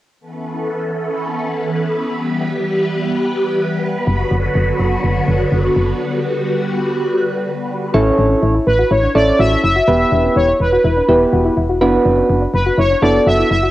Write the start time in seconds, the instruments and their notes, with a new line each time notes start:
0.20 string machine E3 B3 C#4 A4 B4
2.14 string machine G3 G4
4.07 fm bass F#1, string machine D3 F#3 B3 F#4
4.31 fm bass F#1
4.55 fm bass F#1
4.80 fm bass F#1
5.04 fm bass F#1
5.28 fm bass F#1
5.52 fm bass F#1
5.76 fm bass F#1
6.01 string machine G3 F#4
7.94 fm bass A1, synth keys C#4 E4 A4 C#5, synth pluck E4
8.18 fm bass A1, synth pluck D4
8.30 synth pluck C#4
8.43 fm bass A1, synth pluck E4
8.55 synth pluck E4
8.67 fm bass A1, analog polysynth B4
8.79 synth pluck F#4
8.91 fm bass A1, synth pluck E4, analog polysynth C#5
9.03 synth pluck D4
9.15 fm bass A1, synth keys C#4 E4 A4 C#5, synth pluck E4, analog polysynth D5
9.39 fm bass A1, synth pluck F#4, analog polysynth E5
9.52 synth pluck E4
9.63 fm bass F#1, synth pluck E4, analog polysynth E5
9.76 synth pluck F#4
9.88 fm bass E1, synth keys B3 E4 G4 B4, synth pluck E4
10.12 fm bass E1, synth pluck D4
10.24 synth pluck C#4
10.36 fm bass E1, synth pluck E4, analog polysynth C#5
10.48 synth pluck E4
10.60 fm bass E1, analog polysynth B4
10.73 synth pluck F#4
10.84 fm bass E1, synth pluck E4
10.97 synth pluck D4
11.09 fm bass E1, synth keys B3 E4 G4 B4, synth pluck E4
11.33 fm bass E1, synth pluck F#4
11.45 synth pluck E4
11.57 fm bass E1, synth pluck E4
11.69 synth pluck F#4
11.81 fm bass F#1, synth keys B3 D4 F#4 B4, synth pluck E4
12.05 fm bass F#1, synth pluck D4
12.18 synth pluck C#4
12.29 fm bass F#1, synth pluck D4
12.42 synth pluck D4
12.54 fm bass F#1, analog polysynth B4
12.66 synth pluck F#4
12.78 fm bass F#1, synth pluck E4, analog polysynth C#5
12.90 synth pluck D4
13.02 fm bass F#1, synth keys B3 D4 F#4 A4, synth pluck E4, analog polysynth D5
13.26 fm bass F#1, synth pluck F#4, analog polysynth E5
13.39 synth pluck E4
13.51 fm bass F#1, synth pluck E4, analog polysynth E5
13.63 synth pluck F#4